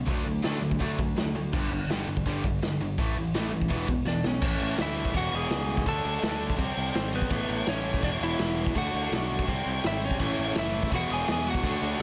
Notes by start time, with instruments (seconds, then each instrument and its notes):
0.07 picked electric bass D2, distorted electric guitar D3 A3 D4, overdriven electric guitar F#3, kick, open hi-hat
0.25 picked electric bass D2, distorted electric guitar D3 A3, overdriven electric guitar F#3
0.43 picked electric bass D2, distorted electric guitar D3 A3 D4, overdriven electric guitar F#3, snare, open hi-hat
0.61 picked electric bass D2, distorted electric guitar D3 A3, overdriven electric guitar F#3
0.71 kick
0.79 picked electric bass D2, distorted electric guitar D3 A3 D4, overdriven electric guitar F#3, kick, open hi-hat
0.98 picked electric bass D2, distorted electric guitar D3 A3, overdriven electric guitar F#3, kick
1.16 picked electric bass D2, distorted electric guitar D3 A3, overdriven electric guitar F#3, snare, open hi-hat
1.34 picked electric bass D2, distorted electric guitar D3 A3, overdriven electric guitar F#3
1.53 picked electric bass G1, distorted electric guitar G2 D3 G3, kick, crash
1.69 picked electric bass G1, distorted electric guitar G2 D3
1.88 picked electric bass G1, distorted electric guitar G2 D3 G3, snare, open hi-hat
2.07 picked electric bass G1, distorted electric guitar G2 D3
2.17 kick
2.26 picked electric bass G1, distorted electric guitar G2 D3 G3, kick, open hi-hat
2.44 picked electric bass G1, distorted electric guitar G2 D3, kick
2.61 picked electric bass G1, distorted electric guitar G2 D3, snare, open hi-hat
2.80 picked electric bass G1, distorted electric guitar G2 D3
2.98 picked electric bass A1, distorted electric guitar A2 E3 A3, kick, open hi-hat
3.16 picked electric bass A1, distorted electric guitar A2 E3
3.34 picked electric bass A1, distorted electric guitar A2 E3 A3, snare, open hi-hat
3.52 picked electric bass A1, distorted electric guitar A2 E3
3.61 kick
3.69 picked electric bass E1, distorted electric guitar E2 B2 E3, overdriven electric guitar B3 D4, kick, open hi-hat
3.87 picked electric bass E1, distorted electric guitar E2 B2, overdriven electric guitar E3 B3, kick
4.05 picked electric bass E1, distorted electric guitar E2 B2, overdriven electric guitar E3 B3, lead electric guitar D4 D5, snare
4.24 picked electric bass B1, distorted electric guitar E2 B2, overdriven electric guitar E3 B3, lead electric guitar C#4 C#5, snare
4.42 picked electric bass A1, distorted electric guitar A2 E3 A3, kick, crash
4.60 picked electric bass A1, crash
4.78 picked electric bass D2, snare, crash
4.82 lead electric guitar E4 E5
4.96 crash
5.05 kick
5.13 picked electric bass E1, distorted electric guitar E2 B2 E3, kick, crash
5.17 lead electric guitar F#4 F#5
5.32 picked electric bass E1, lead electric guitar G#4 G#5, crash
5.50 picked electric bass C#2, snare, crash
5.68 crash
5.77 kick
5.85 picked electric bass D2, distorted electric guitar D3 A3 D4, lead electric guitar A4 A5, kick, crash
6.05 picked electric bass D2, crash
6.23 picked electric bass D2, snare, crash
6.41 crash
6.50 kick
6.57 picked electric bass C2, distorted electric guitar C3 G3 C4, kick, crash
6.77 picked electric bass C2, crash
6.95 picked electric bass G#1, lead electric guitar C4 C5, snare, crash
7.12 lead electric guitar B3 B4, crash
7.22 kick
7.31 picked electric bass A1, distorted electric guitar A2 E3 A3, kick, crash
7.49 picked electric bass A1, crash
7.66 picked electric bass A1, lead electric guitar C#4 C#5, snare, crash
7.85 crash
7.94 kick
8.02 picked electric bass E1, distorted electric guitar E2 B2 E3, lead electric guitar D4 D5, kick, crash
8.21 picked electric bass E1, lead electric guitar E4 E5, crash
8.39 picked electric bass E1, snare, crash
8.57 crash
8.66 kick
8.75 picked electric bass D2, distorted electric guitar D3 A3 D4, lead electric guitar F#5, kick, crash
8.79 lead electric guitar F#4
8.94 picked electric bass D2, crash
9.12 picked electric bass B1, snare, crash
9.31 crash
9.39 kick
9.46 picked electric bass C2, distorted electric guitar C3 G3 C4, kick, crash
9.66 picked electric bass C2, crash
9.83 picked electric bass G#1, lead electric guitar E4 E5, snare, crash
10.02 lead electric guitar C#4 C#5, crash
10.11 kick
10.19 picked electric bass A1, distorted electric guitar A2 E3 A3, overdriven electric guitar C#4 E4, kick, crash
10.37 picked electric bass A1, crash
10.55 picked electric bass F#1, lead electric guitar E4 E5, snare, crash
10.74 crash
10.83 kick
10.91 picked electric bass E1, distorted electric guitar E2 B2 E3, overdriven electric guitar G#3 B3, lead electric guitar F#4, kick, crash
10.96 overdriven electric guitar E4, lead electric guitar F#5
11.10 picked electric bass E1, lead electric guitar G#4 G#5, crash
11.28 picked electric bass E2, lead electric guitar G#4, snare, crash
11.32 lead electric guitar G#5
11.46 lead electric guitar F#4, crash
11.50 lead electric guitar F#5
11.54 kick
11.63 picked electric bass D2, distorted electric guitar D3 A3 D4, overdriven electric guitar F#4, kick, crash
11.82 picked electric bass D2, crash